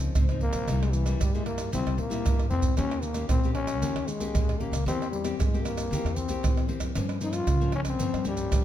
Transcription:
Already playing: upright bass C#2, nylon-string guitar C#3 F3 C4 D#4
0.00 pandeiro, maracas, surdo
0.15 upright bass C#2, nylon-string guitar G#2 F3 C4 D#4, pandeiro, tamborim, maracas, surdo
0.29 nylon-string guitar F3 C4 D#4, pandeiro, tamborim, maracas
0.41 trombone A#3, pandeiro
0.53 upright bass B1, pandeiro, tamborim, maracas, surdo
0.67 upright bass C2, nylon-string guitar C3 G3 A#3 E4, pandeiro, tamborim, maracas, surdo
0.83 trombone G#3, pandeiro, tamborim, maracas
0.93 trombone E3, pandeiro, maracas
1.06 nylon-string guitar G3 A#3 E4, pandeiro, tamborim, maracas
1.20 upright bass G2, nylon-string guitar G2, trombone G3, pandeiro, tamborim, maracas, surdo
1.34 nylon-string guitar G3 A#3 E4, trombone G#3, pandeiro, maracas, surdo
1.46 trombone A#3, pandeiro, tamborim
1.58 pandeiro, tamborim, maracas, surdo
1.72 upright bass C2, nylon-string guitar C3 G3 A#3 E4, trombone C4, pandeiro, maracas, surdo
1.86 upright bass C2, pandeiro, tamborim, maracas
1.98 upright bass A#2, trombone A#3, pandeiro
2.10 nylon-string guitar G3 A#3 E4, pandeiro, maracas, surdo
2.25 upright bass G2, nylon-string guitar G2, pandeiro, tamborim, maracas, surdo
2.40 pandeiro, tamborim, maracas
2.50 upright bass E2, nylon-string guitar G3 A#3 E4, trombone C4, surdo, pandeiro
2.62 pandeiro, maracas, surdo
2.77 upright bass D#2, nylon-string guitar D#3 A#3 C#4 G4, trombone C#4, pandeiro, tamborim, maracas, surdo
2.91 pandeiro, tamborim, maracas
3.02 trombone A#3, pandeiro, maracas
3.14 nylon-string guitar A#3 C#4 G4, pandeiro, tamborim, maracas
3.29 upright bass A#1, nylon-string guitar A#2, trombone C4, pandeiro, tamborim, maracas, surdo
3.44 nylon-string guitar A#3 C#4 G4, pandeiro, maracas, surdo
3.54 trombone C#4, pandeiro, tamborim
3.67 pandeiro, tamborim, maracas, surdo
3.82 upright bass D#2, nylon-string guitar D#3 A#3 C#4 G4, pandeiro, maracas, surdo
3.96 upright bass D#2, pandeiro, tamborim, maracas
4.07 trombone G#3, pandeiro, maracas
4.20 nylon-string guitar A#3 C#4 G4, pandeiro, maracas, surdo
4.35 upright bass D#2, nylon-string guitar A#2, pandeiro, tamborim, maracas, surdo
4.49 pandeiro, tamborim, maracas
4.59 trombone A#3, nylon-string guitar A#3 C#4 G4, pandeiro
4.72 upright bass C#2, pandeiro, tamborim, maracas, surdo
4.86 upright bass E2, nylon-string guitar E3 A#3 C4 G4, trombone C4, pandeiro, tamborim, maracas, surdo
5.02 pandeiro, tamborim, maracas
5.11 trombone G3, pandeiro
5.24 nylon-string guitar A#3 C4 G4, pandeiro, tamborim, maracas
5.38 upright bass G2, nylon-string guitar E3, trombone G#3, pandeiro, tamborim, maracas, surdo
5.53 nylon-string guitar A#3 C4 G4, pandeiro, maracas, surdo
5.63 trombone A#3, pandeiro, tamborim, maracas
5.78 pandeiro, tamborim, maracas, surdo
5.91 upright bass E2, nylon-string guitar E3 A#3 C4 G4, pandeiro, maracas, surdo
6.04 upright bass E2, pandeiro, tamborim, maracas
6.16 trombone C4, pandeiro, maracas, surdo
6.28 nylon-string guitar A#3 C4 G4, pandeiro, maracas, surdo
6.43 upright bass E2, nylon-string guitar E3, pandeiro, tamborim, maracas, surdo
6.57 pandeiro, tamborim, maracas
6.68 nylon-string guitar A#3 C4 G4, pandeiro
6.80 upright bass F#2, pandeiro, tamborim, maracas, surdo
6.95 nylon-string guitar G2 F3 A#3 C#4, upright bass G2, pandeiro, tamborim, maracas, surdo
7.09 pandeiro, tamborim, maracas
7.21 nylon-string guitar F3 A#3 C#4, trombone D#4, pandeiro, maracas
7.33 trombone F4, pandeiro, tamborim, maracas
7.47 nylon-string guitar G2, upright bass C#3, pandeiro, tamborim, maracas, surdo
7.61 nylon-string guitar F3 A#3 C#4, pandeiro, maracas, surdo
7.72 trombone C#4, pandeiro, tamborim
7.85 trombone C4, pandeiro, tamborim, maracas, surdo
7.99 nylon-string guitar G2 F3 A#3 C#4, upright bass G2, pandeiro, maracas, surdo
8.14 upright bass G2, pandeiro, tamborim, maracas
8.25 nylon-string guitar F3 A#3 C#4, trombone G3, pandeiro, maracas, surdo
8.37 pandeiro, maracas, surdo
8.51 nylon-string guitar G2, upright bass G2, pandeiro, tamborim, maracas, surdo

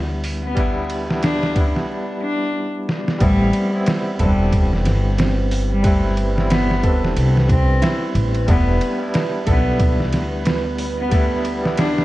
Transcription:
Already playing: upright bass D2, tine electric piano G3 B3 D4 E4
0.24 open hi-hat
0.44 cello B3
0.55 tine electric piano G3 B3 D4, kick, ride
0.60 tine electric piano E4
0.90 ride
1.06 tine electric piano G3 B3 D4
1.10 tine electric piano E4, snare
1.23 cello D4, snare, ride
1.43 snare
1.51 tine electric piano G3 B3
1.56 upright bass B1, tine electric piano D4, kick, ride
1.61 tine electric piano E4
1.76 snare
2.22 cello D4
2.89 snare
3.08 snare
3.18 upright bass A1, tine electric piano G3 B3 C4, cello G3, nylon-string guitar A3, ambient pad B4, kick, ride
3.23 tine electric piano E4
3.53 ride
3.71 tine electric piano G3 B3 C4
3.76 tine electric piano E4
3.86 snare, ride
4.15 tine electric piano G3 B4
4.19 upright bass E1, cello G3, tine electric piano C4, nylon-string guitar A4, kick, ride
4.25 tine electric piano D4
4.52 kick, ride
4.73 snare
4.85 upright bass G1, snare, ride
5.18 nylon-string guitar C4, snare, ride
5.51 open hi-hat
5.72 cello G3
5.82 tine electric piano G3 C4 B4, nylon-string guitar A3, kick, ride
5.87 tine electric piano E4
6.17 ride
6.35 tine electric piano G3 B3 C4, snare
6.40 tine electric piano E4
6.50 cello B3, snare, ride
6.71 snare
6.79 tine electric piano G3 B4
6.83 upright bass E1, tine electric piano C4, nylon-string guitar A4, kick, ride
6.89 tine electric piano D4
7.05 snare
7.16 upright bass C2, ride
7.37 snare
7.49 cello C4, kick, ride
7.82 nylon-string guitar E4, snare, ride
8.15 upright bass A1, ride
8.34 ride
8.46 upright bass E1, tine electric piano G3 B3 D4, nylon-string guitar A3, cello B3, kick, ride
8.51 tine electric piano E4
8.81 ride
8.98 tine electric piano G3 B3 D4
9.03 tine electric piano E4
9.14 snare, ride
9.42 tine electric piano G3 B3
9.46 upright bass B1, cello B3, tine electric piano D4, nylon-string guitar A4, kick, ride
9.52 tine electric piano E4
9.80 kick, ride
10.00 snare
10.13 upright bass D2, snare, ride
10.45 nylon-string guitar B3, snare, ride
10.78 open hi-hat
10.98 cello B3
11.09 tine electric piano G3 B3 D4, nylon-string guitar A3, kick, ride
11.14 tine electric piano E4
11.45 ride
11.62 tine electric piano G3 B3 D4, snare
11.67 tine electric piano E4
11.77 cello D4, snare, ride
11.98 snare

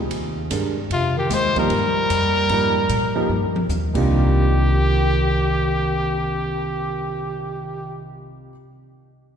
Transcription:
0.10 upright bass D#2, ride
0.51 upright bass G2, upright piano G#3 D4 G4 A#4, hi-hat pedal, ride
0.90 upright bass F2, bass clarinet C3, trumpet F4, ride
1.16 bass clarinet D#3, trumpet G4
1.30 upright bass D#2, bass clarinet G#3, snare, hi-hat pedal, ride
1.34 trumpet C5
1.56 upright piano F3 A#3 D#4 G4, bass clarinet G3, trumpet A#4, kick, ride
1.70 upright bass G2, ride
2.10 upright bass F2, hi-hat pedal, ride
2.49 upright bass G#2, upright piano F3 A#3 D#4 G4, ride
2.89 upright bass A#2, hi-hat pedal, ride
3.15 upright piano F3 A#3 D#4 G4
3.29 upright bass G2, high tom
3.56 high tom
3.69 upright bass D#2, hi-hat pedal, high tom
3.93 upright bass C2, upright piano C3 G3 A#3 D4 D#4 F4, bass clarinet D#3, trumpet G4, kick, crash

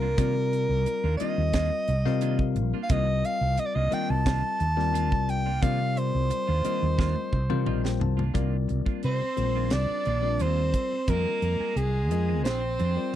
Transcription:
Already playing: fretless electric bass C2, soprano saxophone A#4
0.02 clean electric guitar A#3 D4 F4
0.17 fretless electric bass C3, clean electric guitar D#3 A#3 D4 F4, tine electric piano G3 C4 F4 A#4 D5, kick, closed hi-hat
0.36 muted clean electric guitar stroke
0.52 muted clean electric guitar stroke, closed hi-hat
0.69 fretless electric bass C2
0.86 muted clean electric guitar stroke, closed hi-hat
1.04 fretless electric bass D#2, clean electric guitar A#3 D4 F4
1.17 clean electric guitar D#3 A#3, tine electric piano G3 C4 F4 A#4 D#5, soprano saxophone D#5, closed hi-hat
1.21 clean electric guitar D4 F4
1.38 fretless electric bass D#2
1.53 clean electric guitar D#3 A#3 D4 F4, kick, snare, closed hi-hat
1.71 muted clean electric guitar stroke
1.88 fretless electric bass C2, muted clean electric guitar stroke, closed hi-hat
2.06 fretless electric bass C3, tine electric piano G3 C4 F4 A#4 F5, muted clean electric guitar stroke, snare
2.21 clean electric guitar D#3 A#3 D4 F4, closed hi-hat
2.39 muted clean electric guitar stroke, kick
2.55 fretless electric bass A#1, muted clean electric guitar stroke, closed hi-hat
2.74 clean electric guitar A#3 D4 F4, muted fretless electric bass stroke
2.83 soprano saxophone F5
2.89 fretless electric bass C2, clean electric guitar D#3 A#3 D4 F4, tine electric piano G3 C4 F4 A#4 D#5, soprano saxophone D#5, kick, closed hi-hat
3.08 muted clean electric guitar stroke
3.24 soprano saxophone F5, muted clean electric guitar stroke, closed hi-hat
3.41 fretless electric bass C2
3.57 soprano saxophone D#5, muted clean electric guitar stroke, closed hi-hat
3.66 soprano saxophone D5
3.75 fretless electric bass C2, clean electric guitar A#3 D4 F4, soprano saxophone D#5
3.91 clean electric guitar D#3 A#3 D4 F4, tine electric piano G3 C4 F4 A#4 D#5, soprano saxophone G5, closed hi-hat
4.10 fretless electric bass C2, soprano saxophone A5
4.26 clean electric guitar D#3 A#3 D4 F4, kick, snare, closed hi-hat
4.43 muted clean electric guitar stroke
4.60 fretless electric bass D#2, muted clean electric guitar stroke, closed hi-hat
4.77 tine electric piano G3 C4 F4 A#4 D5, muted clean electric guitar stroke, snare
4.93 clean electric guitar D#3 A#3 D4 F4, closed hi-hat
5.12 fretless electric bass C2, kick
5.28 soprano saxophone G5, muted clean electric guitar stroke, closed hi-hat
5.46 clean electric guitar A#3 D4 F4
5.62 fretless electric bass C3, clean electric guitar D#3 A#3 D4 F4, tine electric piano G3 C4 F4 A#4 D5, soprano saxophone F5, kick, closed hi-hat
5.81 muted clean electric guitar stroke
5.96 soprano saxophone C5, muted clean electric guitar stroke, closed hi-hat
6.15 fretless electric bass C2
6.30 muted clean electric guitar stroke, closed hi-hat
6.47 fretless electric bass D#2, clean electric guitar A#3 D4 F4
6.64 clean electric guitar D#3 A#3 D4 F4, tine electric piano G3 C4 F4 A#4 D#5, closed hi-hat
6.83 fretless electric bass D#2
6.98 clean electric guitar D#3 A#3 D4 F4, kick, snare
7.16 muted clean electric guitar stroke, high tom
7.33 fretless electric bass C2, muted clean electric guitar stroke, kick
7.50 fretless electric bass C3, tine electric piano G3 C4 F4 A#4 C5, muted clean electric guitar stroke, mid tom
7.66 fretless electric bass A#1, clean electric guitar D#3 A#3 D4 F4, tine electric piano D#5, mid tom
7.83 tine electric piano G5, muted clean electric guitar stroke, snare
8.00 fretless electric bass C2, tine electric piano A5, muted clean electric guitar stroke, floor tom
8.17 clean electric guitar A#3 D4 F4, floor tom
8.34 fretless electric bass C2, clean electric guitar D#3 A#3 D4 F4, tine electric piano G3 C4 F4 A#4 D5, kick, closed hi-hat
8.68 fretless electric bass C2, muted clean electric guitar stroke, closed hi-hat
8.86 clean electric guitar A#3 D4 F4, kick
9.03 fretless electric bass C3, overdriven electric guitar C4, soprano saxophone C5, muted clean electric guitar stroke, closed hi-hat
9.21 muted clean electric guitar stroke, muted fretless electric bass stroke
9.37 fretless electric bass A#1, tine electric piano G3 C4 F4 A#4 C5, muted clean electric guitar stroke, closed hi-hat
9.56 clean electric guitar D#3 A#3 D4 F4
9.70 fretless electric bass C2, overdriven electric guitar D4, soprano saxophone D5, snare, closed hi-hat
9.89 muted clean electric guitar stroke, muted fretless electric bass stroke
10.05 fretless electric bass A#1, clean electric guitar D#3 A#3 D4 F4, closed hi-hat
10.22 tine electric piano G3 C4 F4 A#4 D5
10.39 fretless electric bass D#2, clean electric guitar D#3 A#3 D4 F4, soprano saxophone C5, closed hi-hat
10.44 overdriven electric guitar C4
10.74 muted clean electric guitar stroke, kick, closed hi-hat
10.92 muted clean electric guitar stroke
11.08 fretless electric bass F2, clean electric guitar D#3 G#3 C4 G#4, tine electric piano G3 C4 F4 A#4 D#5, soprano saxophone A#4, kick, closed hi-hat
11.12 overdriven electric guitar A#3
11.42 fretless electric bass F2, muted clean electric guitar stroke, closed hi-hat
11.60 clean electric guitar G#3 C4 G#4, muted fretless electric bass stroke
11.76 fretless electric bass C2, overdriven electric guitar G#3, soprano saxophone G#4, muted clean electric guitar stroke, closed hi-hat
11.95 muted clean electric guitar stroke
12.11 fretless electric bass F2, tine electric piano G#3 C4 F4 A#4 D#5, muted clean electric guitar stroke, closed hi-hat
12.28 clean electric guitar D#3 G#3 C4 G#4
12.44 fretless electric bass A#1, clean electric guitar F3 C4 D4 G#4, soprano saxophone C5, snare, closed hi-hat
12.49 overdriven electric guitar C4
12.62 muted clean electric guitar stroke
12.79 fretless electric bass F2, clean electric guitar F3 C4 D4 G#4, closed hi-hat
12.96 tine electric piano G3 C4 F4 A#4 D5, muted clean electric guitar stroke

